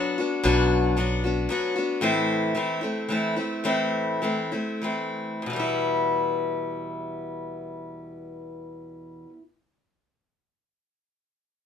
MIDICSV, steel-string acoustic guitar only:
0, 0, Header, 1, 2, 480
1, 0, Start_track
1, 0, Key_signature, 1, "minor"
1, 0, Tempo, 530504
1, 405, Time_signature, 3, 2, 24, 8
1, 2808, Tempo, 578592
1, 4248, Tempo, 652884
1, 9259, End_track
2, 0, Start_track
2, 0, Title_t, "Steel-string acoustic guitar"
2, 0, Program_c, 0, 25
2, 0, Note_on_c, 0, 54, 59
2, 0, Note_on_c, 0, 59, 61
2, 0, Note_on_c, 0, 62, 66
2, 0, Note_on_c, 0, 66, 58
2, 151, Note_off_c, 0, 66, 0
2, 162, Note_on_c, 0, 66, 45
2, 167, Note_off_c, 0, 54, 0
2, 167, Note_off_c, 0, 62, 0
2, 171, Note_off_c, 0, 59, 0
2, 178, Note_on_c, 0, 62, 40
2, 188, Note_on_c, 0, 59, 38
2, 388, Note_off_c, 0, 59, 0
2, 393, Note_on_c, 0, 47, 80
2, 395, Note_off_c, 0, 62, 0
2, 398, Note_on_c, 0, 54, 78
2, 399, Note_off_c, 0, 66, 0
2, 399, Note_on_c, 0, 59, 75
2, 406, Note_on_c, 0, 62, 85
2, 410, Note_on_c, 0, 66, 77
2, 864, Note_off_c, 0, 54, 0
2, 871, Note_off_c, 0, 59, 0
2, 875, Note_on_c, 0, 54, 54
2, 877, Note_off_c, 0, 47, 0
2, 878, Note_off_c, 0, 62, 0
2, 882, Note_on_c, 0, 59, 61
2, 885, Note_off_c, 0, 66, 0
2, 889, Note_on_c, 0, 62, 62
2, 902, Note_on_c, 0, 66, 65
2, 1109, Note_off_c, 0, 66, 0
2, 1118, Note_off_c, 0, 54, 0
2, 1120, Note_on_c, 0, 66, 42
2, 1121, Note_off_c, 0, 59, 0
2, 1125, Note_off_c, 0, 62, 0
2, 1134, Note_on_c, 0, 62, 39
2, 1145, Note_on_c, 0, 59, 35
2, 1347, Note_on_c, 0, 54, 62
2, 1349, Note_off_c, 0, 59, 0
2, 1360, Note_off_c, 0, 66, 0
2, 1360, Note_on_c, 0, 59, 61
2, 1362, Note_off_c, 0, 62, 0
2, 1372, Note_on_c, 0, 62, 64
2, 1373, Note_on_c, 0, 66, 69
2, 1579, Note_off_c, 0, 66, 0
2, 1589, Note_on_c, 0, 66, 46
2, 1593, Note_off_c, 0, 54, 0
2, 1598, Note_off_c, 0, 62, 0
2, 1599, Note_off_c, 0, 59, 0
2, 1608, Note_on_c, 0, 62, 43
2, 1614, Note_on_c, 0, 59, 38
2, 1819, Note_on_c, 0, 45, 69
2, 1827, Note_off_c, 0, 59, 0
2, 1828, Note_on_c, 0, 52, 79
2, 1830, Note_on_c, 0, 57, 71
2, 1833, Note_off_c, 0, 62, 0
2, 1834, Note_off_c, 0, 66, 0
2, 1837, Note_on_c, 0, 60, 78
2, 1841, Note_on_c, 0, 64, 81
2, 2300, Note_off_c, 0, 52, 0
2, 2304, Note_on_c, 0, 52, 55
2, 2306, Note_off_c, 0, 57, 0
2, 2310, Note_off_c, 0, 45, 0
2, 2310, Note_off_c, 0, 60, 0
2, 2317, Note_on_c, 0, 57, 54
2, 2321, Note_on_c, 0, 60, 55
2, 2324, Note_off_c, 0, 64, 0
2, 2327, Note_on_c, 0, 64, 58
2, 2532, Note_off_c, 0, 64, 0
2, 2543, Note_on_c, 0, 64, 41
2, 2548, Note_off_c, 0, 60, 0
2, 2555, Note_off_c, 0, 52, 0
2, 2559, Note_on_c, 0, 60, 40
2, 2561, Note_off_c, 0, 57, 0
2, 2571, Note_on_c, 0, 57, 38
2, 2791, Note_on_c, 0, 52, 54
2, 2795, Note_off_c, 0, 57, 0
2, 2799, Note_off_c, 0, 64, 0
2, 2802, Note_off_c, 0, 60, 0
2, 2805, Note_on_c, 0, 57, 53
2, 2812, Note_on_c, 0, 60, 57
2, 2822, Note_on_c, 0, 64, 63
2, 3013, Note_off_c, 0, 64, 0
2, 3023, Note_off_c, 0, 60, 0
2, 3023, Note_on_c, 0, 64, 39
2, 3029, Note_off_c, 0, 52, 0
2, 3033, Note_on_c, 0, 60, 41
2, 3036, Note_off_c, 0, 57, 0
2, 3049, Note_on_c, 0, 57, 34
2, 3250, Note_off_c, 0, 57, 0
2, 3251, Note_on_c, 0, 45, 63
2, 3254, Note_off_c, 0, 60, 0
2, 3259, Note_off_c, 0, 64, 0
2, 3259, Note_on_c, 0, 52, 66
2, 3260, Note_on_c, 0, 57, 66
2, 3264, Note_on_c, 0, 60, 73
2, 3269, Note_on_c, 0, 64, 70
2, 3722, Note_off_c, 0, 52, 0
2, 3730, Note_off_c, 0, 57, 0
2, 3732, Note_on_c, 0, 52, 49
2, 3737, Note_off_c, 0, 60, 0
2, 3738, Note_off_c, 0, 45, 0
2, 3740, Note_on_c, 0, 57, 52
2, 3745, Note_off_c, 0, 64, 0
2, 3747, Note_on_c, 0, 60, 50
2, 3755, Note_on_c, 0, 64, 51
2, 3970, Note_off_c, 0, 64, 0
2, 3977, Note_off_c, 0, 60, 0
2, 3980, Note_on_c, 0, 64, 39
2, 3987, Note_off_c, 0, 52, 0
2, 3987, Note_on_c, 0, 60, 35
2, 3991, Note_off_c, 0, 57, 0
2, 4000, Note_on_c, 0, 57, 31
2, 4228, Note_on_c, 0, 52, 48
2, 4229, Note_off_c, 0, 57, 0
2, 4238, Note_off_c, 0, 60, 0
2, 4239, Note_on_c, 0, 57, 52
2, 4240, Note_off_c, 0, 64, 0
2, 4248, Note_on_c, 0, 60, 51
2, 4250, Note_on_c, 0, 64, 58
2, 4676, Note_on_c, 0, 40, 50
2, 4706, Note_on_c, 0, 47, 55
2, 4707, Note_off_c, 0, 52, 0
2, 4711, Note_off_c, 0, 57, 0
2, 4715, Note_off_c, 0, 60, 0
2, 4716, Note_off_c, 0, 64, 0
2, 4732, Note_on_c, 0, 52, 58
2, 4758, Note_on_c, 0, 55, 62
2, 4779, Note_on_c, 0, 59, 63
2, 4804, Note_on_c, 0, 64, 62
2, 7489, Note_off_c, 0, 40, 0
2, 7520, Note_off_c, 0, 47, 0
2, 7546, Note_off_c, 0, 52, 0
2, 7571, Note_off_c, 0, 55, 0
2, 7593, Note_off_c, 0, 59, 0
2, 7617, Note_off_c, 0, 64, 0
2, 9259, End_track
0, 0, End_of_file